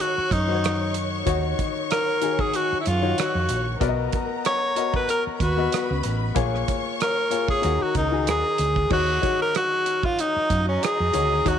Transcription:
Already playing: grand piano D#3 D#4 F#4 C#5, string section C#5 C#6
0.00 tenor saxophone F#4, closed hi-hat
0.18 muted fingered electric bass stroke
0.31 fingered electric bass F#2, tenor saxophone D#4, kick, closed hi-hat
0.47 grand piano D#3 D#4 F#4 C5
0.55 grand piano C#5
0.64 cross-stick, closed hi-hat
0.94 closed hi-hat
1.26 fingered electric bass D#2, grand piano D#3 D#4 F#4 C#5, kick, closed hi-hat
1.59 kick, closed hi-hat
1.91 tenor saxophone A#4, cross-stick, closed hi-hat
2.21 grand piano D#3 D#4 F#4 G#4, closed hi-hat
2.39 tenor saxophone G#4, kick
2.54 tenor saxophone F#4, closed hi-hat
2.72 muted fingered electric bass stroke
2.80 tenor saxophone E4
2.86 fingered electric bass F#2, tenor saxophone F4, closed hi-hat
3.02 grand piano D#3 D#4 F#4 C#5
3.18 tenor saxophone F#4, cross-stick, closed hi-hat
3.35 fingered electric bass F2
3.49 fingered electric bass A#1, closed hi-hat
3.80 fingered electric bass B1, grand piano B3 F#4 A#4 D5, string section A#4 A#5, kick, closed hi-hat
3.88 grand piano D#5
4.12 kick, closed hi-hat
4.45 tenor saxophone C#5, cross-stick, closed hi-hat
4.76 grand piano B3 F#4 A#4 D#5, closed hi-hat
4.94 tenor saxophone B4, kick
5.09 tenor saxophone A#4, closed hi-hat
5.27 muted fingered electric bass stroke
5.40 fingered electric bass D#2, tenor saxophone F#4, string section B4 B5, kick, closed hi-hat
5.57 grand piano B3 F#4 B4 D#5
5.72 cross-stick, closed hi-hat
5.91 fingered electric bass C#2
6.03 fingered electric bass A1, closed hi-hat
6.35 fingered electric bass A#1, grand piano A#3 F4 G#4 C#5, string section C#5 C#6, kick, closed hi-hat
6.55 cross-stick
6.68 kick, closed hi-hat
7.00 tenor saxophone A#4, cross-stick, closed hi-hat
7.30 grand piano A#3 F4 G#4 C#5, closed hi-hat
7.48 tenor saxophone G#4, kick
7.62 fingered electric bass D#2, grand piano D#3 D#4 F#4 C#5, string section A#4 A#5, closed hi-hat
7.82 tenor saxophone F#4
7.95 fingered electric bass C#2, tenor saxophone D#4, kick, closed hi-hat
8.11 grand piano D#3 D#4 F#4 G#4
8.27 fingered electric bass D#2, tenor saxophone G#4, cross-stick, closed hi-hat
8.58 fingered electric bass D2, closed hi-hat
8.76 kick
8.90 fingered electric bass D#2, grand piano D#3 D#4 F#4 C#5, tenor saxophone F#4, kick, crash
9.22 grand piano D#3 D#4 F#4 C#5, kick, cross-stick, closed hi-hat
9.42 tenor saxophone A#4
9.55 tenor saxophone F#4, cross-stick, closed hi-hat
9.86 closed hi-hat
10.03 tenor saxophone F4, kick
10.18 tenor saxophone D#4, string section F#4 D#5 A#5, closed hi-hat
10.36 muted fingered electric bass stroke
10.50 fingered electric bass F#2, kick, closed hi-hat
10.69 tenor saxophone C#4
10.83 tenor saxophone G#4, cross-stick, closed hi-hat
11.00 fingered electric bass F2
11.13 fingered electric bass D2, grand piano D#3 D#4 F#4 C#5, closed hi-hat
11.45 fingered electric bass D#2, grand piano D#3 D#4 F#4 C#5, tenor saxophone F#4, kick, closed hi-hat

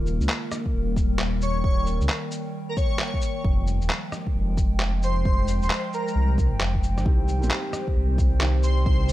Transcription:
Already playing: detuned saw bass D#1, ambient pad D#3 A#3 F4 A#4
0.06 shaker
0.20 detuned saw bass C#2, ambient pad G3, shaker
0.29 clap
0.46 ambient pad G5
0.52 cross-stick, shaker
0.66 kick
0.74 detuned saw bass D#1
0.96 kick, shaker
1.19 clap
1.42 digital synth lead C#5, shaker
1.64 detuned saw bass D#1, digital synth lead C#5, kick
1.86 shaker
2.01 detuned saw bass C#2, shaker
2.09 clap
2.31 shaker
2.69 digital synth lead A#4
2.77 digital synth lead C#5, kick, shaker
2.99 clap
3.14 kick
3.22 shaker
3.44 detuned saw bass F1, ambient pad F3, kick
3.67 shaker
3.73 ambient pad G#3
3.82 detuned saw bass D#1, shaker
3.90 clap
4.12 cross-stick, shaker
4.27 kick
4.35 detuned saw bass F1
4.57 kick, shaker
4.75 ambient pad C5
4.80 clap
5.03 digital synth lead C5, shaker
5.25 detuned saw bass F1, digital synth lead C5, kick
5.48 shaker
5.62 detuned saw bass D#1, digital synth lead C5, shaker
5.70 digital synth lead C5, clap
5.93 digital synth lead A#4, shaker
6.08 shaker
6.15 detuned saw bass C2
6.38 kick, shaker
6.52 detuned saw bass F1
6.61 clap
6.75 kick
6.83 shaker
6.97 detuned saw bass G#1, cross-stick, shaker
7.04 detuned saw bass C2, felt piano D#3 G3 C4, ambient pad D#3, kick
7.08 felt piano G4
7.13 ambient pad G3
7.28 shaker
7.39 detuned saw bass A#1, felt piano D#3 G3
7.43 felt piano C4, shaker
7.47 felt piano G4, clap
7.73 cross-stick, shaker
7.88 kick
7.96 detuned saw bass C2
8.18 kick, shaker
8.39 felt piano D#3 G3 C4, clap
8.43 felt piano G4
8.63 digital synth lead C5, shaker
8.85 detuned saw bass C2, felt piano D#3 G3 C4 G4, digital synth lead C5, kick
9.09 shaker

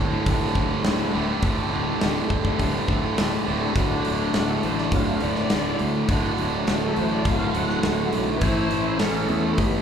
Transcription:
Already playing: fingered electric bass D1, distorted electric guitar D2 A2 D3, tonewheel organ G3 A3 D4 A4, steel-string acoustic guitar G4
0.00 steel-string acoustic guitar A3 D4
0.12 distorted electric guitar A2 D3 G3
0.26 fingered electric bass D1, steel-string acoustic guitar D3 A3 D4 G4, kick, open hi-hat
0.55 fingered electric bass D1, distorted electric guitar D2 A2 D3 G3, kick
0.83 fingered electric bass D1, distorted electric guitar D2 A2 D3 G3, steel-string acoustic guitar D3 A3 D4 G4, snare, open hi-hat
0.99 distorted electric guitar A2 D3 G3
1.14 fingered electric bass D1, distorted electric guitar D2 A2 D3 G3, steel-string acoustic guitar A3 D4 G4
1.27 distorted electric guitar A2 D3 G3
1.41 fingered electric bass D1, distorted electric guitar D2 A2 D3 G3, steel-string acoustic guitar D3 A3 D4 G4, tonewheel organ G3 A3 D4 A4, kick, open hi-hat
1.56 distorted electric guitar A2 D3 G3
1.72 fingered electric bass D1, distorted electric guitar D2 A2 D3 G3, steel-string acoustic guitar A3 D4 G4
2.01 fingered electric bass D1, distorted electric guitar D2 A2 D3 G3, steel-string acoustic guitar D3 A3 D4 G4, snare, open hi-hat
2.15 distorted electric guitar A2 D3 G3
2.30 fingered electric bass D1, muted distorted electric guitar stroke, kick
2.44 distorted electric guitar A2 D3 G3, kick
2.59 fingered electric bass D1, steel-string acoustic guitar D3 A3 D4 G4, kick, open hi-hat
2.87 fingered electric bass D1, distorted electric guitar D2 A2 D3 G3, kick
3.16 fingered electric bass D1, distorted electric guitar D2 A2 D3 G3, steel-string acoustic guitar D3 A3 D4, snare, open hi-hat
3.20 steel-string acoustic guitar G4
3.32 distorted electric guitar A2 D3 G3
3.46 fingered electric bass D1, distorted electric guitar D2 A2 D3 G3
3.60 distorted electric guitar A2 D3 G3
3.74 fingered electric bass D1, distorted electric guitar D2 A2 D3 A3 F#4, steel-string acoustic guitar D3 A3 D4 F#4, tonewheel organ F#3 A3 D4, kick, open hi-hat
4.05 fingered electric bass D1, open hi-hat
4.34 fingered electric bass D1, steel-string acoustic guitar D3 A3 D4 F#4, tonewheel organ D4, snare, open hi-hat
4.49 tonewheel organ A4
4.63 fingered electric bass A1, steel-string acoustic guitar A3 D4 F#4, tonewheel organ C5, open hi-hat
4.78 tonewheel organ D5, snare
4.92 fingered electric bass D1, steel-string acoustic guitar D3 A3 D4 F#4, tonewheel organ F#3 A3 D4 F5, kick, open hi-hat
5.20 fingered electric bass D1, distorted electric guitar D2 A2 D3 A3 F#4, steel-string acoustic guitar A3 D4 F#4, tonewheel organ D5, open hi-hat
5.36 snare
5.50 fingered electric bass D1, distorted electric guitar D2 A2 D3 A3 F#4, steel-string acoustic guitar D3 A3 D4 F#4, snare, open hi-hat
5.79 fingered electric bass D2, open hi-hat
6.08 fingered electric bass D1, distorted electric guitar D2 A2 D3 A3 F#4, steel-string acoustic guitar D3 A3 D4 F#4, tonewheel organ F#3 A3 D4, kick, open hi-hat
6.38 fingered electric bass D1, open hi-hat
6.67 fingered electric bass D1, steel-string acoustic guitar D3 A3 D4 F#4, tonewheel organ D4, snare, open hi-hat
6.85 tonewheel organ A4
6.96 fingered electric bass A1, steel-string acoustic guitar A3 D4 F#4, tonewheel organ C5, open hi-hat
7.13 tonewheel organ D5
7.25 fingered electric bass D1, steel-string acoustic guitar D3 A3 D4 F#4, tonewheel organ F5, kick, open hi-hat
7.54 fingered electric bass D1, distorted electric guitar D2 A2 D3 A3 F#4, steel-string acoustic guitar A3 D4 F#4, tonewheel organ F#5, open hi-hat
7.69 snare
7.83 fingered electric bass D1, distorted electric guitar D2 A2 D3 A3 F#4, steel-string acoustic guitar D3 A3 D4 F#4, snare, open hi-hat
8.13 fingered electric bass B1, open hi-hat
8.38 fingered electric bass A1, distorted electric guitar A2, steel-string acoustic guitar A2 E3, tonewheel organ B4, kick, open hi-hat
8.42 distorted electric guitar E3 A3 C#4 E4 A4, steel-string acoustic guitar B3 C#4 E4, tonewheel organ E4 C5
8.71 fingered electric bass A1, tonewheel organ E4 C5, open hi-hat
8.99 fingered electric bass A1, steel-string acoustic guitar A2 E3 B3 C#4 E4, tonewheel organ C#4 A4, snare, open hi-hat
9.27 fingered electric bass E2, tonewheel organ A3 B3 C#4 A4, steel-string acoustic guitar B3 C#4 E4, open hi-hat
9.57 fingered electric bass A1, steel-string acoustic guitar E3 B3 C#4 E4, tonewheel organ B3 G4, kick, open hi-hat

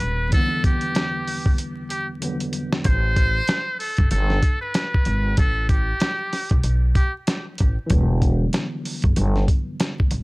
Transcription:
Already playing: muted trumpet B4
0.00 upright bass D#1, closed hi-hat
0.29 tine electric piano E2 D3 E3, closed hi-hat
0.33 tine electric piano G3 B3, muted trumpet A4, kick
0.64 muted trumpet G4, kick, closed hi-hat
0.81 closed hi-hat
0.95 snare, closed hi-hat
1.28 open hi-hat
1.46 kick
1.58 closed hi-hat
1.90 muted trumpet G4, closed hi-hat
2.20 tine electric piano E2 D3 F#3 G3 B3, closed hi-hat
2.40 closed hi-hat
2.53 closed hi-hat
2.73 snare
2.84 upright bass A1, muted trumpet C5, kick, closed hi-hat
3.16 kick, closed hi-hat
3.47 snare, closed hi-hat
3.80 muted trumpet A4, open hi-hat
3.97 upright bass G1, kick, closed hi-hat
4.11 upright bass G1, muted trumpet A4, closed hi-hat
4.30 snare
4.43 kick, closed hi-hat
4.61 muted trumpet B4
4.74 snare, closed hi-hat
4.94 kick
5.05 upright bass G#1, closed hi-hat
5.37 upright bass A1, muted trumpet A4, kick, closed hi-hat
5.69 muted trumpet G4, kick, closed hi-hat
6.00 snare, closed hi-hat
6.33 snare, open hi-hat
6.49 upright bass B1, kick, closed hi-hat
6.63 upright bass B1, closed hi-hat
6.95 muted trumpet G4, kick, closed hi-hat
7.27 snare, closed hi-hat
7.58 upright bass A1, kick, closed hi-hat
7.86 upright bass E1, tine electric piano D3 E3 F#3, closed hi-hat
7.90 tine electric piano G3 B3, kick
8.22 kick, closed hi-hat
8.53 snare, closed hi-hat
8.85 open hi-hat
9.02 upright bass G1, kick, closed hi-hat
9.16 upright bass G1, closed hi-hat
9.36 snare
9.48 kick, closed hi-hat
9.80 snare, closed hi-hat
10.00 kick
10.11 upright bass D#1, closed hi-hat

